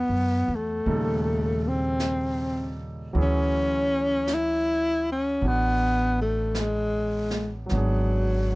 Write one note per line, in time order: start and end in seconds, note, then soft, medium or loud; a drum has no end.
0.00 0.86 F#3 soft
0.00 0.57 B3 medium
0.00 0.86 B3 soft
0.00 0.86 D4 soft
0.00 0.86 E4 soft
0.00 0.86 F#4 soft
0.09 0.45 F#2 soft
0.48 0.83 E2 medium
0.55 1.69 A3 medium
0.84 3.11 D#2 medium
0.84 3.15 A#2 soft
0.84 3.16 C#3 soft
0.84 3.15 G3 soft
0.84 3.15 D#4 soft
0.84 3.15 A4 medium
0.84 brush sweep soft
1.68 2.80 C4 medium
2.00 brush sweep soft
2.00 snare soft
2.00 hi-hat pedal soft
3.13 5.38 D2 medium
3.13 7.71 E3 soft
3.13 7.65 F#3 soft
3.13 7.71 C#4 soft
3.13 7.72 E4 soft
3.13 brush sweep soft
3.18 7.72 G#4 soft
3.22 4.36 C#4 medium
4.27 brush sweep soft
4.27 snare soft
4.27 hi-hat pedal soft
4.34 5.08 E4 medium
5.12 5.49 C#4 medium
5.41 7.66 A1 medium
5.41 7.70 B3 soft
5.41 7.71 D4 soft
5.41 brush sweep soft
5.46 6.21 B3 medium
5.46 7.72 F#4 soft
6.22 6.62 A3 medium
6.55 brush sweep soft
6.55 snare soft
6.55 hi-hat pedal soft
6.60 7.55 G#3 medium
7.30 snare soft
7.66 8.55 F#3 soft
7.66 brush sweep soft
7.66 snare soft
7.71 8.55 G#1 medium
7.71 8.55 F#3 medium
7.71 8.55 B3 soft
7.71 8.55 D4 soft
7.77 8.55 G#4 soft